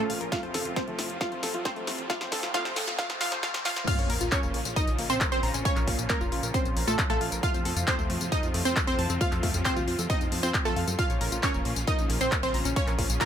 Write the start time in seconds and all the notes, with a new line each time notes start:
Already playing: A#2 C#3 F3 C#4 F4, riser
0.00 A3 A4
0.10 A#1 F5, open hi-hat
0.21 A#1 A#4, closed hi-hat
0.32 A2 C3 A3 C4 F4 F5, kick, snare, closed hi-hat
0.43 F2 C5, closed hi-hat
0.54 F2 A4, snare, open hi-hat
0.65 F2 F4, closed hi-hat
0.76 C4 A4 C5, kick, snare, closed hi-hat
0.88 D#2 A3, closed hi-hat
0.99 F2 A3, snare, open hi-hat
1.10 F2, closed hi-hat
1.21 A3 F4 F5, kick, snare, closed hi-hat
1.32 F2 C5, closed hi-hat
1.43 F2 A4, snare, open hi-hat
1.54 F2 F4, closed hi-hat
1.65 C4 A4 C5, kick, snare, closed hi-hat
1.76 F2 A3, closed hi-hat
1.87 F2 A3, snare, open hi-hat
1.99 F2, closed hi-hat
2.10 A3 F4 F5, kick, snare, closed hi-hat, noise sweep
2.21 F2 C5, snare, closed hi-hat
2.32 F2 A4, kick, snare, open hi-hat
2.43 F2 F4, snare, closed hi-hat
2.54 A3 F4 F5, kick, snare, closed hi-hat
2.65 D#2 C5, snare, closed hi-hat
2.76 F2 A4, snare, open hi-hat
2.88 F2 F4, snare, closed hi-hat
2.99 A3 F4 F5, kick, snare, closed hi-hat
3.10 F2 C5, snare, closed hi-hat
3.21 F2 A3 F4 F5, snare, open hi-hat
3.32 F2 C5, snare, closed hi-hat
3.43 A3 F4 F5, kick, snare, closed hi-hat
3.54 F2 C5, snare, closed hi-hat
3.65 F2 A3 F4 F5, snare, open hi-hat
3.76 F2 C5, snare, closed hi-hat
3.87 A#2 C#3 F3 A#3 C#4 F4 F5 F6, kick, closed hi-hat, crash, tambourine, sub drop
3.99 A#1 C#5, closed hi-hat, tambourine
4.10 A#1 A#4, open hi-hat
4.21 A#1 F4, closed hi-hat, tambourine
4.32 C#4 A#4 C#5 C#6, kick, clap, closed hi-hat, tambourine
4.43 F1 A#3, tambourine
4.54 A#1 A#3, open hi-hat
4.65 A#1, closed hi-hat, tambourine
4.76 D#4 A#4 D#5 D#6, kick, closed hi-hat, tambourine
4.87 A#1, closed hi-hat, tambourine
4.99 A#1 A#3, open hi-hat
5.10 A#1 C4 C5 C6, closed hi-hat, tambourine
5.21 A#4, kick, clap, closed hi-hat, tambourine
5.32 A#1 C4 C5 C6, closed hi-hat, tambourine
5.43 A#1 A#5, open hi-hat
5.54 A#1 C#4, closed hi-hat, tambourine
5.65 A#3 C#4 C#5 C#6, kick, closed hi-hat, tambourine
5.76 A#1 A#4, clap, closed hi-hat, tambourine
5.88 A#1 A#3, kick, open hi-hat
5.99 A#1, closed hi-hat, tambourine
6.10 A#3 C#4 A#4 A#5, kick, clap, closed hi-hat, tambourine
6.21 F1 F4, tambourine
6.32 A#1 F4, open hi-hat
6.43 A#1 A#4, closed hi-hat, tambourine
6.54 C4 C#4 C5 C6, kick, closed hi-hat, tambourine
6.65 A#1, closed hi-hat, tambourine
6.77 A#1 A#5, open hi-hat
6.88 A#1 A3 F4 A4 A5, tambourine
6.99 C#4, kick, clap, closed hi-hat, tambourine
7.10 A#1 A3 F4 A4 A5, closed hi-hat, tambourine
7.21 A#1 F5, open hi-hat
7.32 A#1 A#4, closed hi-hat, tambourine
7.43 A2 C3 A3 C4 F4 F5 F6, kick, closed hi-hat, tambourine
7.54 F2 C5, closed hi-hat, tambourine
7.65 F2 A4, open hi-hat
7.76 F2 F4, closed hi-hat, tambourine
7.88 C4 A4 C5 C6, kick, clap, closed hi-hat, tambourine
7.99 D#2 A3, tambourine
8.10 F2 A3, open hi-hat
8.21 F2, closed hi-hat, tambourine
8.32 D#4 A4 D#5 D#6, kick, closed hi-hat, tambourine
8.43 F2, closed hi-hat, tambourine
8.54 F2 A3, open hi-hat
8.65 F2 C4 C5 C6, closed hi-hat, tambourine
8.76 A4, kick, clap, closed hi-hat, tambourine
8.87 F2 C4 C5 C6, closed hi-hat, tambourine
8.99 F2 A5, open hi-hat
9.10 F2 C4, closed hi-hat, tambourine
9.21 A3 F4 F5 F6, kick, closed hi-hat, tambourine
9.32 F2 A4, clap, closed hi-hat, tambourine
9.43 F2 A3, kick, open hi-hat
9.54 F2, closed hi-hat, tambourine
9.65 C4 C5 C6, kick, clap, closed hi-hat, tambourine
9.76 D#2 F4, tambourine
9.88 F2 F4, open hi-hat
9.99 F2 A4, closed hi-hat, tambourine
10.10 C4 D#4 D#5 D#6, kick, closed hi-hat, tambourine
10.21 F2, closed hi-hat, tambourine
10.32 F2 A5, open hi-hat
10.43 F2 C4 F4 C5 C6, tambourine
10.54 C4, kick, clap, closed hi-hat, tambourine
10.65 F2 A3 F4 A4 A5, closed hi-hat, tambourine
10.76 F2 F5, open hi-hat
10.88 F#2 A4, closed hi-hat, tambourine
10.99 A#2 C#3 A#3 C#4 F4 F5 F6, kick, closed hi-hat, tambourine
11.10 A#1 C#5, closed hi-hat, tambourine
11.21 A#1 A#4, open hi-hat
11.32 A#1 F4, closed hi-hat, tambourine
11.43 C#4 A#4 C#5 C#6, kick, clap, closed hi-hat, tambourine
11.54 F1 A#3, tambourine
11.65 A#1 A#3, open hi-hat
11.76 A#1, closed hi-hat, tambourine
11.87 D#4 A#4 D#5 D#6, kick, closed hi-hat, tambourine
11.99 A#1, closed hi-hat, tambourine
12.10 A#1 A#3, open hi-hat
12.21 A#1 C4 C5 C6, closed hi-hat, tambourine
12.32 A#4, kick, clap, closed hi-hat, tambourine
12.43 A#1 C4 C5 C6, closed hi-hat, tambourine
12.54 A#1 A#5, open hi-hat
12.65 A#1 C#4, closed hi-hat, tambourine
12.76 A#3 C#4 C#5 C#6, kick, closed hi-hat, tambourine
12.87 A#1 A#4, clap, closed hi-hat, tambourine
12.99 A#1 A#3, kick, open hi-hat
13.10 A#1, closed hi-hat, tambourine
13.21 A#3 F4 A#4 A#5, kick, clap, closed hi-hat, tambourine